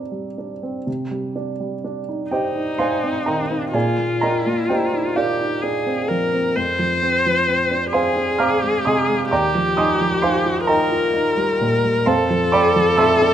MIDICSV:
0, 0, Header, 1, 3, 480
1, 0, Start_track
1, 0, Key_signature, -3, "minor"
1, 0, Tempo, 986842
1, 422, Time_signature, 6, 3, 24, 8
1, 893, Tempo, 955414
1, 2333, Tempo, 933126
1, 3293, Tempo, 916031
1, 6840, End_track
2, 0, Start_track
2, 0, Title_t, "Viola"
2, 0, Program_c, 0, 41
2, 1136, Note_on_c, 0, 63, 39
2, 1833, Note_off_c, 0, 63, 0
2, 1852, Note_on_c, 0, 65, 47
2, 2569, Note_on_c, 0, 67, 42
2, 2576, Note_off_c, 0, 65, 0
2, 2804, Note_on_c, 0, 68, 41
2, 2811, Note_off_c, 0, 67, 0
2, 3042, Note_on_c, 0, 70, 45
2, 3050, Note_off_c, 0, 68, 0
2, 3288, Note_on_c, 0, 72, 52
2, 3296, Note_off_c, 0, 70, 0
2, 3997, Note_off_c, 0, 72, 0
2, 4000, Note_on_c, 0, 68, 53
2, 4711, Note_off_c, 0, 68, 0
2, 4725, Note_on_c, 0, 67, 59
2, 5429, Note_off_c, 0, 67, 0
2, 5444, Note_on_c, 0, 70, 55
2, 6181, Note_on_c, 0, 69, 69
2, 6189, Note_off_c, 0, 70, 0
2, 6840, Note_off_c, 0, 69, 0
2, 6840, End_track
3, 0, Start_track
3, 0, Title_t, "Grand piano"
3, 0, Program_c, 1, 0
3, 0, Control_c, 1, 64, 127
3, 0, Note_on_c, 1, 48, 31
3, 0, Note_on_c, 1, 55, 27
3, 0, Note_on_c, 1, 60, 29
3, 0, Note_on_c, 1, 62, 28
3, 0, Note_on_c, 1, 63, 26
3, 56, Note_off_c, 1, 55, 0
3, 56, Note_on_c, 1, 55, 24
3, 129, Note_off_c, 1, 62, 0
3, 185, Note_on_c, 1, 62, 25
3, 254, Note_off_c, 1, 55, 0
3, 306, Note_off_c, 1, 60, 0
3, 306, Note_on_c, 1, 60, 28
3, 377, Note_off_c, 1, 62, 0
3, 403, Note_off_c, 1, 48, 0
3, 423, Note_on_c, 1, 48, 33
3, 424, Note_off_c, 1, 60, 0
3, 432, Control_c, 1, 64, 0
3, 436, Note_off_c, 1, 63, 0
3, 502, Control_c, 1, 64, 127
3, 540, Note_on_c, 1, 55, 29
3, 660, Note_on_c, 1, 62, 29
3, 729, Note_off_c, 1, 55, 0
3, 778, Note_on_c, 1, 55, 29
3, 847, Note_off_c, 1, 62, 0
3, 897, Note_on_c, 1, 62, 31
3, 967, Note_off_c, 1, 55, 0
3, 1019, Note_on_c, 1, 63, 29
3, 1088, Note_off_c, 1, 62, 0
3, 1133, Note_on_c, 1, 79, 58
3, 1137, Note_off_c, 1, 63, 0
3, 1137, Note_on_c, 1, 62, 30
3, 1138, Note_on_c, 1, 72, 42
3, 1139, Note_on_c, 1, 67, 42
3, 1140, Note_on_c, 1, 75, 40
3, 1255, Note_on_c, 1, 63, 26
3, 1327, Note_off_c, 1, 62, 0
3, 1359, Note_off_c, 1, 67, 0
3, 1359, Note_off_c, 1, 72, 0
3, 1360, Note_off_c, 1, 75, 0
3, 1370, Note_on_c, 1, 84, 61
3, 1373, Note_off_c, 1, 79, 0
3, 1374, Note_off_c, 1, 63, 0
3, 1374, Note_on_c, 1, 62, 30
3, 1374, Note_on_c, 1, 72, 44
3, 1374, Note_on_c, 1, 77, 46
3, 1375, Note_on_c, 1, 80, 45
3, 1495, Note_on_c, 1, 60, 28
3, 1565, Note_off_c, 1, 62, 0
3, 1596, Note_off_c, 1, 72, 0
3, 1596, Note_off_c, 1, 77, 0
3, 1597, Note_off_c, 1, 80, 0
3, 1609, Note_on_c, 1, 82, 49
3, 1611, Note_off_c, 1, 84, 0
3, 1615, Note_on_c, 1, 51, 24
3, 1615, Note_on_c, 1, 70, 36
3, 1616, Note_on_c, 1, 75, 37
3, 1616, Note_on_c, 1, 79, 39
3, 1686, Note_off_c, 1, 60, 0
3, 1733, Note_on_c, 1, 60, 30
3, 1806, Note_off_c, 1, 51, 0
3, 1833, Note_off_c, 1, 48, 0
3, 1837, Note_off_c, 1, 70, 0
3, 1837, Note_off_c, 1, 75, 0
3, 1838, Note_off_c, 1, 79, 0
3, 1847, Note_on_c, 1, 80, 53
3, 1849, Note_on_c, 1, 46, 34
3, 1851, Note_off_c, 1, 82, 0
3, 1852, Note_on_c, 1, 68, 39
3, 1852, Note_on_c, 1, 74, 38
3, 1853, Note_off_c, 1, 60, 0
3, 1853, Note_on_c, 1, 77, 36
3, 1860, Control_c, 1, 64, 0
3, 1949, Control_c, 1, 64, 127
3, 1973, Note_on_c, 1, 58, 29
3, 2076, Note_off_c, 1, 68, 0
3, 2076, Note_off_c, 1, 74, 0
3, 2077, Note_off_c, 1, 77, 0
3, 2088, Note_on_c, 1, 82, 60
3, 2090, Note_off_c, 1, 80, 0
3, 2094, Note_on_c, 1, 75, 43
3, 2095, Note_on_c, 1, 62, 32
3, 2095, Note_on_c, 1, 70, 46
3, 2095, Note_on_c, 1, 79, 44
3, 2165, Note_off_c, 1, 58, 0
3, 2212, Note_on_c, 1, 58, 31
3, 2286, Note_off_c, 1, 62, 0
3, 2316, Note_off_c, 1, 75, 0
3, 2317, Note_off_c, 1, 70, 0
3, 2317, Note_off_c, 1, 79, 0
3, 2329, Note_on_c, 1, 79, 56
3, 2330, Note_off_c, 1, 82, 0
3, 2333, Note_on_c, 1, 62, 31
3, 2334, Note_on_c, 1, 75, 40
3, 2336, Note_on_c, 1, 67, 39
3, 2336, Note_on_c, 1, 72, 38
3, 2405, Note_off_c, 1, 58, 0
3, 2454, Note_on_c, 1, 63, 28
3, 2527, Note_off_c, 1, 62, 0
3, 2558, Note_off_c, 1, 75, 0
3, 2559, Note_off_c, 1, 67, 0
3, 2559, Note_off_c, 1, 72, 0
3, 2569, Note_on_c, 1, 77, 45
3, 2572, Note_off_c, 1, 79, 0
3, 2574, Note_off_c, 1, 63, 0
3, 2574, Note_on_c, 1, 62, 31
3, 2574, Note_on_c, 1, 65, 34
3, 2575, Note_on_c, 1, 70, 35
3, 2575, Note_on_c, 1, 74, 37
3, 2695, Note_on_c, 1, 63, 25
3, 2764, Note_off_c, 1, 62, 0
3, 2812, Note_on_c, 1, 62, 32
3, 2813, Note_off_c, 1, 63, 0
3, 2930, Note_on_c, 1, 60, 33
3, 3004, Note_off_c, 1, 62, 0
3, 3055, Note_on_c, 1, 53, 27
3, 3124, Note_off_c, 1, 60, 0
3, 3172, Note_on_c, 1, 60, 31
3, 3246, Note_off_c, 1, 53, 0
3, 3271, Note_off_c, 1, 46, 0
3, 3273, Note_off_c, 1, 65, 0
3, 3273, Note_off_c, 1, 70, 0
3, 3273, Note_off_c, 1, 74, 0
3, 3290, Note_off_c, 1, 77, 0
3, 3293, Note_off_c, 1, 60, 0
3, 3293, Note_on_c, 1, 41, 37
3, 3302, Control_c, 1, 64, 0
3, 3374, Control_c, 1, 64, 127
3, 3410, Note_on_c, 1, 53, 33
3, 3533, Note_on_c, 1, 60, 35
3, 3604, Note_off_c, 1, 53, 0
3, 3657, Note_on_c, 1, 53, 31
3, 3725, Note_off_c, 1, 60, 0
3, 3773, Note_on_c, 1, 60, 34
3, 3845, Note_off_c, 1, 53, 0
3, 3892, Note_on_c, 1, 62, 28
3, 3963, Note_off_c, 1, 60, 0
3, 4005, Note_on_c, 1, 84, 66
3, 4011, Note_off_c, 1, 62, 0
3, 4011, Note_on_c, 1, 60, 36
3, 4011, Note_on_c, 1, 80, 48
3, 4012, Note_on_c, 1, 72, 45
3, 4013, Note_on_c, 1, 77, 50
3, 4127, Note_on_c, 1, 62, 30
3, 4203, Note_off_c, 1, 60, 0
3, 4234, Note_off_c, 1, 80, 0
3, 4235, Note_off_c, 1, 72, 0
3, 4235, Note_off_c, 1, 77, 0
3, 4245, Note_on_c, 1, 89, 72
3, 4248, Note_off_c, 1, 84, 0
3, 4249, Note_off_c, 1, 62, 0
3, 4251, Note_on_c, 1, 60, 39
3, 4251, Note_on_c, 1, 82, 47
3, 4251, Note_on_c, 1, 86, 48
3, 4252, Note_on_c, 1, 77, 50
3, 4370, Note_on_c, 1, 56, 34
3, 4443, Note_off_c, 1, 60, 0
3, 4474, Note_off_c, 1, 82, 0
3, 4475, Note_off_c, 1, 77, 0
3, 4475, Note_off_c, 1, 86, 0
3, 4488, Note_off_c, 1, 89, 0
3, 4489, Note_on_c, 1, 87, 58
3, 4496, Note_on_c, 1, 48, 29
3, 4496, Note_on_c, 1, 80, 45
3, 4496, Note_on_c, 1, 84, 42
3, 4498, Note_on_c, 1, 75, 44
3, 4562, Note_off_c, 1, 56, 0
3, 4615, Note_on_c, 1, 56, 36
3, 4685, Note_off_c, 1, 48, 0
3, 4709, Note_off_c, 1, 41, 0
3, 4716, Note_off_c, 1, 80, 0
3, 4716, Note_off_c, 1, 84, 0
3, 4717, Note_off_c, 1, 75, 0
3, 4729, Note_off_c, 1, 87, 0
3, 4732, Note_off_c, 1, 56, 0
3, 4732, Note_on_c, 1, 86, 62
3, 4736, Note_on_c, 1, 39, 44
3, 4738, Control_c, 1, 64, 0
3, 4738, Note_on_c, 1, 74, 52
3, 4738, Note_on_c, 1, 82, 47
3, 4739, Note_on_c, 1, 79, 52
3, 4830, Control_c, 1, 64, 127
3, 4856, Note_on_c, 1, 53, 36
3, 4956, Note_off_c, 1, 74, 0
3, 4956, Note_off_c, 1, 82, 0
3, 4957, Note_off_c, 1, 79, 0
3, 4970, Note_off_c, 1, 86, 0
3, 4970, Note_on_c, 1, 87, 69
3, 4975, Note_on_c, 1, 63, 38
3, 4976, Note_on_c, 1, 75, 53
3, 4976, Note_on_c, 1, 80, 50
3, 4977, Note_on_c, 1, 84, 51
3, 5044, Note_off_c, 1, 53, 0
3, 5096, Note_on_c, 1, 53, 36
3, 5163, Note_off_c, 1, 63, 0
3, 5194, Note_off_c, 1, 75, 0
3, 5194, Note_off_c, 1, 80, 0
3, 5195, Note_off_c, 1, 84, 0
3, 5207, Note_on_c, 1, 84, 65
3, 5208, Note_off_c, 1, 87, 0
3, 5212, Note_on_c, 1, 63, 39
3, 5212, Note_on_c, 1, 72, 46
3, 5214, Note_on_c, 1, 77, 51
3, 5214, Note_on_c, 1, 80, 50
3, 5283, Note_off_c, 1, 53, 0
3, 5332, Note_on_c, 1, 65, 31
3, 5400, Note_off_c, 1, 63, 0
3, 5432, Note_off_c, 1, 72, 0
3, 5433, Note_off_c, 1, 77, 0
3, 5433, Note_off_c, 1, 80, 0
3, 5444, Note_on_c, 1, 82, 64
3, 5446, Note_off_c, 1, 84, 0
3, 5449, Note_off_c, 1, 65, 0
3, 5451, Note_on_c, 1, 63, 40
3, 5451, Note_on_c, 1, 70, 48
3, 5451, Note_on_c, 1, 75, 47
3, 5452, Note_on_c, 1, 79, 50
3, 5571, Note_on_c, 1, 65, 36
3, 5641, Note_off_c, 1, 63, 0
3, 5688, Note_on_c, 1, 63, 38
3, 5690, Note_off_c, 1, 65, 0
3, 5810, Note_on_c, 1, 55, 39
3, 5882, Note_off_c, 1, 63, 0
3, 5936, Note_on_c, 1, 46, 34
3, 6005, Note_off_c, 1, 55, 0
3, 6056, Note_on_c, 1, 55, 41
3, 6128, Note_off_c, 1, 46, 0
3, 6156, Note_off_c, 1, 39, 0
3, 6156, Note_off_c, 1, 70, 0
3, 6156, Note_off_c, 1, 75, 0
3, 6156, Note_off_c, 1, 79, 0
3, 6170, Note_on_c, 1, 84, 63
3, 6173, Note_off_c, 1, 82, 0
3, 6175, Note_on_c, 1, 41, 49
3, 6176, Note_off_c, 1, 55, 0
3, 6176, Note_on_c, 1, 77, 52
3, 6176, Note_on_c, 1, 81, 54
3, 6178, Note_on_c, 1, 72, 54
3, 6183, Control_c, 1, 64, 0
3, 6262, Control_c, 1, 64, 127
3, 6298, Note_on_c, 1, 53, 39
3, 6398, Note_off_c, 1, 77, 0
3, 6398, Note_off_c, 1, 81, 0
3, 6399, Note_off_c, 1, 72, 0
3, 6412, Note_off_c, 1, 84, 0
3, 6412, Note_on_c, 1, 86, 75
3, 6418, Note_on_c, 1, 79, 56
3, 6418, Note_on_c, 1, 83, 58
3, 6419, Note_on_c, 1, 60, 43
3, 6419, Note_on_c, 1, 74, 61
3, 6487, Note_off_c, 1, 53, 0
3, 6537, Note_on_c, 1, 53, 41
3, 6607, Note_off_c, 1, 60, 0
3, 6637, Note_off_c, 1, 83, 0
3, 6638, Note_off_c, 1, 74, 0
3, 6638, Note_off_c, 1, 79, 0
3, 6648, Note_on_c, 1, 88, 82
3, 6651, Note_off_c, 1, 86, 0
3, 6652, Note_on_c, 1, 60, 40
3, 6653, Note_on_c, 1, 76, 60
3, 6653, Note_on_c, 1, 81, 55
3, 6654, Note_on_c, 1, 84, 56
3, 6726, Note_off_c, 1, 53, 0
3, 6779, Note_on_c, 1, 62, 39
3, 6840, Note_off_c, 1, 41, 0
3, 6840, Note_off_c, 1, 60, 0
3, 6840, Note_off_c, 1, 62, 0
3, 6840, Note_off_c, 1, 76, 0
3, 6840, Note_off_c, 1, 81, 0
3, 6840, Note_off_c, 1, 84, 0
3, 6840, Note_off_c, 1, 88, 0
3, 6840, End_track
0, 0, End_of_file